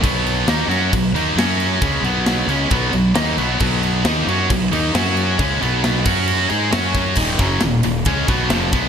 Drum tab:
CC |xxxxxxxx|xxxxxxxx|xxxxxxxx|xxxxxxxx|
RD |--------|--------|--------|--------|
SD |--o---o-|--o---o-|--o---o-|--o---o-|
BD |o---o---|o---o---|o---o---|o--o---o|

CC |x-------|
RD |-xxxxxxx|
SD |--o---o-|
BD |oo--oo-o|